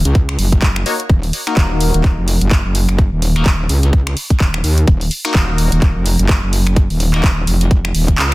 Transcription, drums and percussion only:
0.05 closed hi-hat medium
0.15 kick loud
0.15 closed hi-hat soft
0.29 finger snap medium
0.39 open hi-hat loud
0.52 kick medium
0.52 closed hi-hat medium
0.62 kick loud
0.62 clap loud
0.62 closed hi-hat medium
0.76 finger snap medium
0.86 open hi-hat loud
1.00 closed hi-hat medium
1.10 kick loud
1.10 closed hi-hat medium
1.23 open hi-hat medium
1.33 open hi-hat loud
1.47 finger snap medium
1.47 closed hi-hat medium
1.57 kick loud
1.57 clap loud
1.57 closed hi-hat medium
1.81 open hi-hat loud
1.94 closed hi-hat medium
2.04 kick loud
2.04 clap soft
2.04 closed hi-hat medium
2.28 open hi-hat loud
2.41 closed hi-hat medium
2.51 kick loud
2.51 clap loud
2.51 closed hi-hat soft
2.75 open hi-hat loud
2.89 finger snap medium
2.89 closed hi-hat medium
2.98 kick loud
2.98 closed hi-hat medium
3.22 open hi-hat loud
3.36 finger snap medium
3.36 closed hi-hat medium
3.46 kick loud
3.46 clap loud
3.46 closed hi-hat medium
3.69 open hi-hat loud
3.83 closed hi-hat medium
3.93 kick loud
3.93 closed hi-hat medium
4.07 finger snap medium
4.17 open hi-hat loud
4.30 kick medium
4.30 closed hi-hat medium
4.40 kick loud
4.40 clap loud
4.40 closed hi-hat medium
4.54 finger snap medium
4.64 open hi-hat loud
4.78 closed hi-hat medium
4.87 kick loud
4.87 closed hi-hat soft
5.01 open hi-hat medium
5.11 open hi-hat loud
5.25 finger snap medium
5.25 closed hi-hat medium
5.35 kick loud
5.35 clap loud
5.35 closed hi-hat medium
5.58 open hi-hat loud
5.72 closed hi-hat medium
5.82 kick loud
5.82 clap soft
5.82 closed hi-hat medium
6.06 open hi-hat loud
6.19 closed hi-hat medium
6.29 kick loud
6.29 clap loud
6.29 closed hi-hat medium
6.53 open hi-hat loud
6.67 finger snap medium
6.67 closed hi-hat medium
6.76 kick loud
6.76 closed hi-hat medium
6.90 open hi-hat medium
7.00 open hi-hat loud
7.14 finger snap medium
7.14 clap soft
7.14 closed hi-hat medium
7.24 kick loud
7.24 clap loud
7.24 closed hi-hat medium
7.47 open hi-hat loud
7.61 closed hi-hat medium
7.71 kick loud
7.71 closed hi-hat medium
7.85 finger snap medium
7.95 open hi-hat loud
8.08 kick medium
8.08 closed hi-hat medium
8.18 clap loud
8.18 closed hi-hat medium

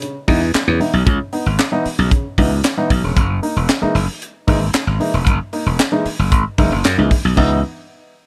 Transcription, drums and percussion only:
0.02 closed hi-hat medium
0.28 kick medium
0.28 open hi-hat medium
0.54 snare loud
0.54 clap medium
0.54 closed hi-hat medium
0.81 open hi-hat medium
1.07 kick loud
1.07 closed hi-hat medium
1.33 open hi-hat medium
1.59 snare loud
1.59 clap medium
1.59 closed hi-hat medium
1.85 open hi-hat medium
2.11 kick loud
2.11 closed hi-hat medium
2.38 kick medium
2.38 open hi-hat medium
2.64 snare loud
2.64 clap medium
2.64 closed hi-hat loud
2.90 kick loud
2.90 open hi-hat medium
3.17 kick loud
3.17 closed hi-hat medium
3.43 open hi-hat medium
3.69 snare loud
3.69 clap medium
3.69 closed hi-hat loud
3.95 open hi-hat medium
4.22 closed hi-hat medium
4.48 kick medium
4.48 open hi-hat medium
4.73 snare loud
4.73 clap loud
4.73 closed hi-hat medium
5.00 open hi-hat medium
5.27 kick loud
5.27 closed hi-hat medium
5.53 open hi-hat medium
5.79 snare loud
5.79 clap medium
5.79 closed hi-hat medium
6.06 open hi-hat medium
6.32 kick loud
6.32 closed hi-hat medium
6.58 kick medium
6.58 open hi-hat medium
6.84 snare loud
6.84 clap medium
6.84 closed hi-hat loud
7.11 kick medium
7.11 open hi-hat medium
7.37 kick medium
7.37 crash medium

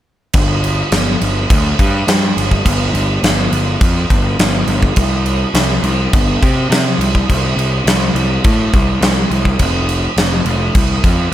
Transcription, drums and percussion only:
0.33 kick loud
0.33 crash medium
0.64 crash medium
0.92 snare loud
0.92 crash medium
1.21 crash medium
1.50 kick loud
1.50 crash medium
1.79 kick medium
1.79 crash medium
2.08 snare loud
2.08 crash medium
2.38 crash medium
2.51 kick medium
2.66 kick loud
2.66 crash medium
2.95 crash medium
3.24 snare loud
3.24 crash medium
3.53 crash medium
3.81 kick loud
3.81 crash medium
4.10 kick medium
4.10 crash medium
4.39 snare loud
4.39 crash medium
4.67 crash medium
4.83 kick medium
4.96 kick loud
4.96 crash medium
5.26 crash medium
5.55 snare loud
5.55 crash medium
5.84 crash medium
6.13 kick loud
6.13 crash medium
6.43 kick medium
6.43 crash medium
6.72 snare loud
6.72 crash medium
7.01 crash medium
7.15 kick medium
7.30 kick loud
7.30 crash medium
7.59 crash medium
7.87 snare loud
7.87 crash medium
8.16 crash medium
8.44 kick loud
8.44 crash medium
8.73 kick medium
8.73 crash medium
9.02 snare loud
9.02 crash medium
9.31 crash medium
9.45 kick medium
9.59 kick medium
9.59 crash medium
9.89 crash medium
10.17 snare loud
10.17 crash medium
10.46 crash medium
10.75 kick loud
10.75 crash medium
11.04 kick medium
11.04 crash medium

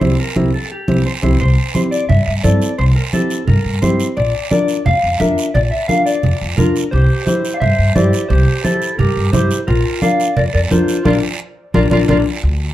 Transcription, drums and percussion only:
0.01 high conga medium
0.01 long guiro medium
0.36 high conga medium
0.36 long guiro medium
0.88 high conga medium
0.88 long guiro medium
1.23 high conga medium
1.23 long guiro loud
1.41 high conga soft
1.41 long guiro medium
1.75 high conga medium
1.75 short guiro medium
1.92 short guiro medium
2.09 high conga soft
2.09 low conga medium
2.09 long guiro medium
2.44 high conga medium
2.44 short guiro medium
2.62 short guiro medium
2.79 high conga soft
2.79 long guiro medium
3.13 high conga medium
3.13 short guiro medium
3.30 short guiro medium
3.48 high conga soft
3.48 low conga medium
3.48 long guiro medium
3.82 high conga medium
3.82 short guiro medium
4.00 short guiro medium
4.17 high conga soft
4.17 long guiro medium
4.51 high conga medium
4.51 short guiro medium
4.68 short guiro medium
4.86 high conga soft
4.86 low conga medium
4.86 long guiro medium
5.20 high conga medium
5.20 short guiro medium
5.38 short guiro medium
5.55 high conga soft
5.55 low conga medium
5.55 long guiro medium
5.89 high conga medium
5.89 short guiro medium
6.07 short guiro medium
6.23 high conga soft
6.23 low conga medium
6.23 long guiro medium
6.58 high conga medium
6.58 low conga medium
6.58 short guiro medium
6.76 short guiro medium
6.92 high conga soft
6.92 long guiro medium
7.27 high conga medium
7.27 short guiro medium
7.45 short guiro medium
7.62 high conga soft
7.62 low conga medium
7.62 long guiro medium
7.96 high conga medium
7.96 short guiro medium
8.13 short guiro medium
8.30 high conga soft
8.30 low conga medium
8.30 long guiro medium
8.65 high conga medium
8.65 short guiro medium
8.82 short guiro medium
8.99 high conga soft
8.99 low conga medium
8.99 long guiro medium
9.33 high conga medium
9.33 low conga medium
9.33 short guiro medium
9.51 short guiro medium
9.68 high conga soft
9.68 long guiro medium
10.02 high conga medium
10.02 short guiro medium
10.20 short guiro medium
10.37 high conga soft
10.37 low conga medium
10.37 long guiro medium
10.71 high conga medium
10.71 short guiro medium
10.88 short guiro medium
11.05 high conga loud
11.05 long guiro medium
11.74 high conga loud
11.74 long guiro medium
11.91 high conga medium
11.91 long guiro loud
12.09 high conga loud
12.09 long guiro medium
12.43 high conga soft

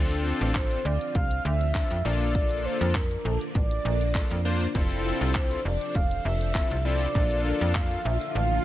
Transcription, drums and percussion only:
0.11 closed hi-hat soft
0.41 closed hi-hat medium
0.55 kick loud
0.55 clap loud
0.55 closed hi-hat medium
0.71 closed hi-hat soft
1.01 closed hi-hat medium
1.15 kick loud
1.15 closed hi-hat medium
1.31 closed hi-hat medium
1.61 closed hi-hat medium
1.75 kick loud
1.75 clap loud
1.75 closed hi-hat medium
1.91 closed hi-hat soft
2.21 closed hi-hat medium
2.35 kick loud
2.35 closed hi-hat medium
2.51 closed hi-hat soft
2.81 closed hi-hat medium
2.95 kick loud
2.95 clap loud
2.95 closed hi-hat medium
3.11 closed hi-hat soft
3.41 closed hi-hat medium
3.55 kick loud
3.55 closed hi-hat medium
3.71 closed hi-hat medium
4.01 closed hi-hat soft
4.15 kick loud
4.15 clap loud
4.15 closed hi-hat medium
4.31 closed hi-hat soft
4.61 closed hi-hat medium
4.75 kick loud
4.75 closed hi-hat medium
4.91 closed hi-hat soft
5.21 closed hi-hat medium
5.35 kick loud
5.35 clap loud
5.35 closed hi-hat medium
5.51 closed hi-hat soft
5.81 closed hi-hat medium
5.95 kick loud
5.95 closed hi-hat medium
6.11 closed hi-hat medium
6.41 closed hi-hat medium
6.55 kick loud
6.55 clap loud
6.55 closed hi-hat medium
6.71 closed hi-hat soft
7.01 closed hi-hat medium
7.15 kick loud
7.15 closed hi-hat medium
7.31 closed hi-hat soft
7.61 closed hi-hat medium
7.75 kick loud
7.75 clap loud
7.75 closed hi-hat medium
7.91 closed hi-hat soft
8.21 closed hi-hat medium

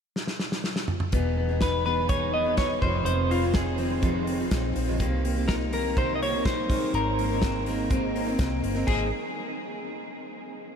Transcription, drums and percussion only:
0.16 snare medium
0.27 snare medium
0.39 snare medium
0.52 snare medium
0.64 snare medium
0.76 snare medium
0.88 mid tom medium
1.00 mid tom medium
1.12 kick medium
1.12 closed hi-hat medium
1.61 kick loud
1.61 snare loud
1.61 closed hi-hat medium
2.09 kick loud
2.09 closed hi-hat medium
2.57 kick loud
2.57 snare loud
2.57 closed hi-hat medium
2.82 kick medium
3.06 closed hi-hat medium
3.31 open hi-hat medium
3.54 kick loud
3.54 snare loud
3.54 closed hi-hat medium
3.78 open hi-hat medium
4.03 kick loud
4.03 closed hi-hat medium
4.27 open hi-hat medium
4.51 kick loud
4.51 snare loud
4.51 closed hi-hat medium
4.76 open hi-hat medium
5.00 kick loud
5.00 closed hi-hat medium
5.25 open hi-hat medium
5.48 kick loud
5.48 snare loud
5.48 closed hi-hat medium
5.73 open hi-hat medium
5.97 kick loud
5.97 closed hi-hat medium
6.22 open hi-hat medium
6.45 kick loud
6.45 snare loud
6.45 closed hi-hat medium
6.70 kick loud
6.70 open hi-hat medium
6.94 closed hi-hat medium
7.19 open hi-hat medium
7.42 kick loud
7.42 snare loud
7.42 closed hi-hat medium
7.66 open hi-hat medium
7.90 kick loud
7.90 closed hi-hat medium
8.16 open hi-hat medium
8.39 kick loud
8.39 snare loud
8.39 closed hi-hat medium
8.64 open hi-hat medium
8.88 kick medium
8.88 crash medium

